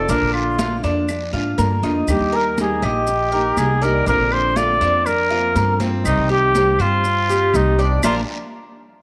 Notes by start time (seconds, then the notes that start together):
Already playing: A4
0.08 A#1 D3 A#3 D4 F4 A#4, high conga, long guiro, maracas
0.22 A#1
0.34 F4, high conga, claves
0.59 D3 A#3 D4 F4, high conga, short guiro, maracas
0.83 F2 A#3 D4 F4, high conga, short guiro, maracas
1.08 muted nylon-string guitar stroke, high conga, long guiro, claves, maracas
1.33 G#2 A#3 D4 F4, high conga
1.58 G2 D3 A#3 D4 F4 A#4, high conga, short guiro, maracas
1.83 F2 A#3 D4 D#4 F4, high conga, short guiro, maracas
2.07 D#2 D#3 G3 A#3 D#4 G4, high conga, long guiro, claves, maracas
2.20 D#2
2.32 A#4, high conga
2.58 D#3 G3 A#3 D#4 G4 G#4, high conga, short guiro, maracas
2.82 A#1 A#3 D#4 G4 D#5, high conga, short guiro, claves, maracas
3.07 muted nylon-string guitar stroke, high conga, long guiro, maracas
3.32 A#3 D#4 G4 A#4, high conga
3.57 C2 G3 A#3 D#4 G#4, high conga, short guiro, claves, maracas
3.61 G4
3.82 G3 A#3 D#4 G4 A#4 D5, high conga, short guiro, maracas
4.06 A#1 D3 A#3 C4 D4 F4 A#4, high conga, long guiro, maracas
4.19 A#1
4.31 C5, high conga, claves
4.56 D3 A#3 C4 F4 D5, high conga, short guiro, maracas
4.81 F2 A#3 C4 D4 F4, high conga, short guiro, maracas
5.06 A#4, muted nylon-string guitar stroke, high conga, long guiro, claves, maracas
5.30 C4 F4, high conga
5.35 A#3
5.55 G2 D3 A#3 C4 F4 A#4, high conga, short guiro, maracas
5.80 C4 F4, high conga, short guiro, maracas
5.84 A#3
6.05 C2 C3 D#3 G3 C4 D#4 G4, high conga, long guiro, claves, maracas
6.17 C2
6.29 G4, high conga
6.55 C3 D#3 G3 C4 G4, high conga, short guiro, maracas
6.79 G2 G3 C4 F4 G4 C5, high conga, short guiro, claves, maracas
7.04 muted nylon-string guitar stroke, high conga, long guiro, maracas
7.29 G3 C4 G4, high conga, maracas
7.53 C2 D#3 G3 C4 D#4 G4, high conga, short guiro, claves, maracas
7.78 D#3 G3 C4 G4 D5, high conga, short guiro, maracas
7.83 D4
8.03 A#1 F3 A#3 D4 F4 A#4, high conga, long guiro, claves, maracas